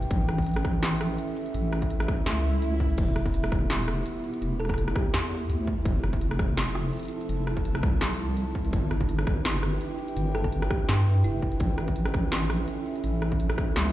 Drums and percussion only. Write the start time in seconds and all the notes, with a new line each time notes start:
0.02 closed hi-hat
0.11 kick, closed hi-hat
0.29 cross-stick
0.38 kick, closed hi-hat
0.40 closed hi-hat
0.42 closed hi-hat
0.44 closed hi-hat
0.47 closed hi-hat
0.49 closed hi-hat
0.51 closed hi-hat
0.54 cross-stick, closed hi-hat, open hi-hat
0.65 kick, cross-stick
0.83 snare, closed hi-hat
1.01 cross-stick, closed hi-hat
1.19 closed hi-hat
1.36 open hi-hat
1.46 closed hi-hat
1.54 closed hi-hat
1.73 cross-stick
1.82 kick, closed hi-hat
1.90 closed hi-hat
2.00 cross-stick, open hi-hat
2.08 kick, cross-stick
2.26 snare, closed hi-hat
2.44 open hi-hat
2.62 closed hi-hat
2.80 kick, open hi-hat
2.98 kick, closed hi-hat, crash
3.16 cross-stick
3.26 kick, closed hi-hat
3.34 closed hi-hat
3.44 cross-stick, open hi-hat
3.52 kick, cross-stick
3.70 snare, closed hi-hat
3.88 cross-stick, closed hi-hat
4.06 closed hi-hat
4.24 open hi-hat
4.34 closed hi-hat
4.42 closed hi-hat
4.60 cross-stick
4.65 cross-stick
4.69 kick, cross-stick, closed hi-hat
4.74 cross-stick
4.78 closed hi-hat
4.88 cross-stick, open hi-hat
4.96 kick, cross-stick
5.14 snare, closed hi-hat
5.32 open hi-hat
5.50 closed hi-hat
5.67 kick
5.85 kick, closed hi-hat
6.04 cross-stick
6.13 kick, closed hi-hat
6.21 closed hi-hat
6.31 cross-stick, open hi-hat
6.39 kick, cross-stick
6.57 snare, closed hi-hat
6.75 cross-stick, closed hi-hat
6.93 closed hi-hat
6.97 closed hi-hat
6.99 closed hi-hat
7.03 closed hi-hat
7.05 closed hi-hat
7.08 closed hi-hat
7.21 closed hi-hat
7.29 closed hi-hat
7.47 cross-stick
7.57 kick, closed hi-hat
7.65 closed hi-hat
7.75 cross-stick, open hi-hat
7.83 kick, cross-stick
8.01 snare, closed hi-hat
8.19 open hi-hat
8.37 closed hi-hat
8.55 kick
8.65 closed hi-hat
8.73 kick, closed hi-hat
8.91 cross-stick
9.01 kick, closed hi-hat
9.09 closed hi-hat
9.19 cross-stick, open hi-hat
9.27 kick, cross-stick
9.45 snare, closed hi-hat
9.63 cross-stick, closed hi-hat
9.81 closed hi-hat
9.99 open hi-hat
10.08 closed hi-hat
10.17 closed hi-hat
10.35 cross-stick
10.44 kick, closed hi-hat
10.53 closed hi-hat
10.62 cross-stick, open hi-hat
10.71 kick, cross-stick
10.89 snare, closed hi-hat
11.06 open hi-hat
11.24 closed hi-hat
11.42 kick
11.52 closed hi-hat
11.60 kick, closed hi-hat
11.78 cross-stick
11.88 kick, closed hi-hat
11.96 closed hi-hat
12.05 cross-stick, open hi-hat
12.14 kick, cross-stick
12.32 snare, closed hi-hat
12.50 cross-stick, closed hi-hat
12.68 closed hi-hat
12.86 open hi-hat
12.96 closed hi-hat
13.04 closed hi-hat
13.22 cross-stick
13.32 kick, closed hi-hat
13.40 closed hi-hat
13.50 cross-stick, open hi-hat
13.58 kick, cross-stick
13.76 snare, closed hi-hat, high tom
13.86 high tom